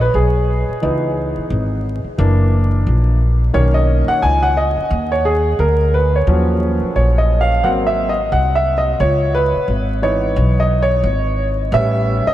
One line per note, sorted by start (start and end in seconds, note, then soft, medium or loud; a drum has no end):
0.00 0.11 A#1 medium
0.00 0.15 B4 medium
0.14 0.66 B1 medium
0.14 1.13 G#4 medium
0.69 muted upright bass stroke soft
0.82 1.34 C#2 medium
0.82 1.80 E3 medium
0.82 1.81 B3 soft
0.82 1.81 D#4 medium
1.37 muted upright bass stroke soft
1.50 2.02 G#1 medium
2.04 muted upright bass stroke soft
2.18 2.83 F#1 loud
2.18 3.16 E3 medium
2.18 3.17 A#3 soft
2.18 3.17 D4 medium
2.87 3.51 A#1 medium
3.54 4.06 B1 loud
3.54 4.52 D#3 medium
3.54 4.53 A#3 medium
3.54 4.53 C#4 medium
3.54 3.75 C#5 medium
3.74 4.10 D#5 medium
4.08 4.23 F#5 loud
4.08 muted upright bass stroke soft
4.22 4.74 C#2 medium
4.22 4.44 G#5 loud
4.43 4.56 F#5 loud
4.57 5.13 D#5 medium
4.77 muted upright bass stroke soft
4.91 5.56 D#2 medium
5.12 5.26 C#5 medium
5.25 5.60 G#4 medium
5.59 6.24 D2 medium
5.59 5.95 A#4 medium
5.94 6.15 B4 medium
6.16 6.46 C#5 medium
6.27 6.79 D#2 medium
6.27 7.60 F3 medium
6.27 7.60 F#3 medium
6.27 7.61 C#4 medium
6.82 muted upright bass stroke soft
6.96 7.64 A#1 medium
6.96 7.19 C#5 medium
7.18 7.42 D#5 medium
7.41 7.64 F5 medium
7.63 8.29 G#1 loud
7.63 8.11 F#3 medium
7.63 8.12 A#3 soft
7.63 8.12 C4 medium
7.63 7.69 F#5 medium
7.87 8.10 E5 medium
8.09 8.33 D#5 medium
8.32 8.97 C2 medium
8.32 8.56 F#5 medium
8.55 8.79 E5 medium
8.78 9.01 D#5 medium
9.00 9.52 C#2 medium
9.00 9.35 C#5 medium
9.35 9.99 B4 loud
9.54 muted upright bass stroke soft
9.68 10.33 G#1 medium
10.02 11.01 E3 medium
10.02 11.01 B3 soft
10.02 11.01 D#4 medium
10.02 10.61 C#5 medium
10.36 11.01 B1 medium
10.60 10.83 D#5 medium
10.83 11.46 C#5 medium
11.04 11.69 G#1 medium
11.72 12.24 A1 loud
11.72 12.34 G3 medium
11.72 12.34 B3 medium
11.72 12.34 C#4 medium
11.72 12.29 E5 loud
12.26 12.34 D#5 loud
12.26 muted upright bass stroke soft